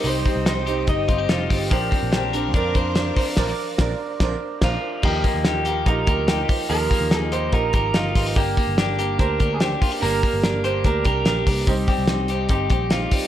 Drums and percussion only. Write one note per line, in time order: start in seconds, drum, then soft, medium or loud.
0.05 hi-hat pedal medium
0.05 open hi-hat medium
0.25 kick medium
0.25 hi-hat pedal medium
0.25 open hi-hat medium
0.46 snare loud
0.46 hi-hat pedal medium
0.46 open hi-hat loud
0.67 hi-hat pedal medium
0.67 open hi-hat medium
0.87 kick loud
0.87 hi-hat pedal medium
0.87 open hi-hat medium
1.09 kick loud
1.09 hi-hat pedal medium
1.09 open hi-hat medium
1.29 snare loud
1.29 hi-hat pedal medium
1.29 open hi-hat medium
1.50 kick medium
1.50 hi-hat pedal medium
1.50 open hi-hat medium
1.71 kick loud
1.71 hi-hat pedal medium
1.71 open hi-hat medium
1.92 kick medium
1.92 hi-hat pedal medium
1.92 open hi-hat medium
2.13 snare loud
2.13 hi-hat pedal medium
2.13 open hi-hat loud
2.33 hi-hat pedal medium
2.33 open hi-hat medium
2.54 kick loud
2.54 hi-hat pedal medium
2.54 open hi-hat medium
2.75 kick loud
2.75 hi-hat pedal medium
2.75 open hi-hat medium
2.95 snare loud
2.95 hi-hat pedal medium
2.95 open hi-hat medium
3.16 kick loud
3.16 hi-hat pedal medium
3.16 open hi-hat medium
3.37 kick loud
3.37 snare loud
3.37 crash medium
3.78 kick loud
3.78 snare loud
4.20 kick loud
4.20 snare medium
4.62 kick loud
4.62 snare loud
4.62 crash medium
5.03 kick loud
5.03 crash medium
5.24 kick medium
5.24 hi-hat pedal medium
5.24 open hi-hat medium
5.45 snare loud
5.45 hi-hat pedal medium
5.45 open hi-hat medium
5.65 hi-hat pedal medium
5.65 open hi-hat medium
5.86 kick medium
5.86 hi-hat pedal medium
5.86 open hi-hat medium
6.07 kick loud
6.07 hi-hat pedal medium
6.07 open hi-hat medium
6.28 snare loud
6.28 hi-hat pedal medium
6.28 open hi-hat medium
6.49 kick loud
6.49 hi-hat pedal medium
6.49 open hi-hat medium
6.70 hi-hat pedal medium
6.70 open hi-hat medium
6.91 kick medium
6.91 hi-hat pedal medium
6.91 open hi-hat medium
7.11 snare loud
7.11 hi-hat pedal medium
7.11 open hi-hat loud
7.32 hi-hat pedal medium
7.32 open hi-hat medium
7.52 kick medium
7.52 hi-hat pedal medium
7.52 open hi-hat medium
7.73 kick loud
7.73 hi-hat pedal medium
7.73 open hi-hat medium
7.94 snare loud
7.94 hi-hat pedal medium
7.94 open hi-hat loud
8.15 kick loud
8.15 hi-hat pedal medium
8.15 open hi-hat medium
8.36 kick loud
8.36 hi-hat pedal medium
8.36 open hi-hat medium
8.57 kick medium
8.57 hi-hat pedal medium
8.57 open hi-hat medium
8.78 snare loud
8.78 hi-hat pedal medium
8.78 open hi-hat loud
8.99 hi-hat pedal medium
8.99 open hi-hat medium
9.19 kick loud
9.19 hi-hat pedal medium
9.19 open hi-hat medium
9.40 kick medium
9.40 hi-hat pedal medium
9.40 open hi-hat medium
9.60 snare loud
9.60 hi-hat pedal medium
9.60 open hi-hat medium
9.82 kick loud
9.82 hi-hat pedal medium
9.82 open hi-hat medium
10.03 hi-hat pedal medium
10.03 open hi-hat medium
10.23 kick medium
10.23 hi-hat pedal medium
10.23 open hi-hat medium
10.44 snare loud
10.44 hi-hat pedal medium
10.44 open hi-hat loud
10.64 hi-hat pedal medium
10.64 open hi-hat medium
10.84 kick loud
10.84 hi-hat pedal medium
10.84 open hi-hat medium
11.05 kick loud
11.05 hi-hat pedal medium
11.05 open hi-hat medium
11.25 snare loud
11.25 hi-hat pedal medium
11.25 open hi-hat medium
11.47 kick medium
11.47 hi-hat pedal medium
11.47 open hi-hat medium
11.67 kick loud
11.67 hi-hat pedal medium
11.67 open hi-hat medium
11.88 kick medium
11.88 hi-hat pedal medium
11.88 open hi-hat medium
12.08 snare loud
12.08 hi-hat pedal medium
12.08 open hi-hat loud
12.28 hi-hat pedal medium
12.28 open hi-hat medium
12.49 kick loud
12.49 hi-hat pedal medium
12.49 open hi-hat medium
12.70 kick loud
12.70 hi-hat pedal medium
12.70 open hi-hat medium
12.90 snare loud
12.90 hi-hat pedal medium
12.90 open hi-hat loud
13.11 kick loud
13.11 hi-hat pedal medium
13.11 open hi-hat medium